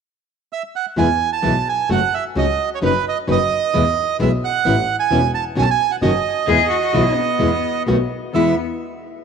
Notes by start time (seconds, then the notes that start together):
0.53 E5
0.76 F#5
0.96 E2 B2 E3 G#3 B3 E4 G#5
1.33 A5
1.42 B1 B2 E3 G#3 B3 E4
1.69 G#5
1.89 F#1 C#3 F#3 A3 C#4 F#4 F#5
2.14 E5
2.35 C#2 C#3 F#3 A3 C#4 F#4 D#5
2.75 C#5
2.82 F#1 F#3 C#4 D#4 B4
3.08 D#5
3.28 F#1 F#3 C#4 D#4 B4 D#5
3.74 E2 B2 E3 G#3 B3 E4
4.19 B1 B2 E3 G#3 B3 E4 E5
4.44 F#5
4.65 A1 E3 B3 C#4 E4
5.00 G#5
5.11 E1 E3 B3 C#4 E4
5.34 A5
5.55 B1 B2 D#3 C#4 F#4 G#5
5.62 A5
5.71 G#5
5.91 F#5
6.01 F#1 B2 D#3 C#4 F#4 D#5
6.47 E2 B2 E3 G#3 B3 E4 G#4
6.69 F#4
6.82 F#4
6.93 B1 B2 E3 G#3 B3 E4
7.04 E4
7.14 B3
7.39 E2 B2 E3 G#3 B3 E4
7.87 B1 B2 D#3 A3 B3 F#4
8.33 E2 B2 E3 G#3 B3 E4 E5